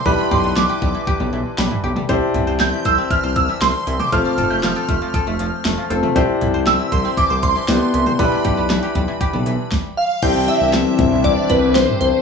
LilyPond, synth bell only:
\new Staff \with { instrumentName = "Synth bell" } { \time 4/4 \key c \major \tempo 4 = 118 b''8 c'''8 d'''4 r2 | r4 g'''8 e'''8 f'''8 e'''8 c'''8. d'''16 | f'''8. g'''16 f'''2~ f'''8 r8 | r4 e'''8 c'''8 d'''8 c'''4. |
b''2. r8 f''8 | g''8 e''4. d''8 b'8 c''8 c''8 | }